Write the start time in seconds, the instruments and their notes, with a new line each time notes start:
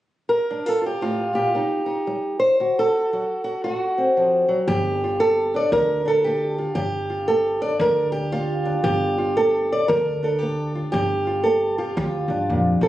0.29 steel-string acoustic guitar A#4
0.50 steel-string acoustic guitar G2 D4
0.66 steel-string acoustic guitar F4 A4
0.82 steel-string acoustic guitar F4
0.86 steel-string acoustic guitar G4
1.01 steel-string acoustic guitar A2 F4
1.33 steel-string acoustic guitar A#2 G4
1.55 steel-string acoustic guitar C3 D#4
1.86 steel-string acoustic guitar D#4
2.07 steel-string acoustic guitar G3
2.40 steel-string acoustic guitar C5
2.60 steel-string acoustic guitar D3 F#4
2.79 steel-string acoustic guitar A4
2.93 steel-string acoustic guitar F#4
3.13 steel-string acoustic guitar F#3 F#4
3.44 steel-string acoustic guitar F#4
3.64 steel-string acoustic guitar A2 F#4
3.98 steel-string acoustic guitar C4
4.17 steel-string acoustic guitar F3
4.48 steel-string acoustic guitar F#3
4.68 upright bass G1, steel-string acoustic guitar G2 G4
5.04 steel-string acoustic guitar F4
5.20 steel-string acoustic guitar A#3 A4
5.54 steel-string acoustic guitar D4 D5
5.72 upright bass D2, steel-string acoustic guitar G2 A#4
6.05 steel-string acoustic guitar D4 A4
6.24 steel-string acoustic guitar A#3 G4
6.58 steel-string acoustic guitar F4
6.75 upright bass G1, steel-string acoustic guitar G2 G4
7.10 steel-string acoustic guitar F4
7.28 steel-string acoustic guitar A#3 A4
7.61 steel-string acoustic guitar D4 D5
7.80 upright bass D2, steel-string acoustic guitar G2 A#4
8.12 steel-string acoustic guitar G4
8.32 steel-string acoustic guitar A#3 F4
8.65 steel-string acoustic guitar D4
8.84 upright bass G1, steel-string acoustic guitar G2 G4
9.18 steel-string acoustic guitar F4
9.37 steel-string acoustic guitar A#3 A4
9.72 steel-string acoustic guitar D5
9.88 upright bass D2, steel-string acoustic guitar G2 A#4
10.23 steel-string acoustic guitar D4 A4
10.39 steel-string acoustic guitar A#3 G4
10.75 steel-string acoustic guitar F4
10.92 upright bass G1, steel-string acoustic guitar G2 G4
11.27 steel-string acoustic guitar F4
11.44 steel-string acoustic guitar A#3 A4
11.78 steel-string acoustic guitar F4 G4
11.97 upright bass D2, steel-string acoustic guitar G2 F4
12.28 upright bass G2, steel-string acoustic guitar D4
12.50 upright bass F2, steel-string acoustic guitar A#2
12.81 upright bass D2, steel-string acoustic guitar C3 A4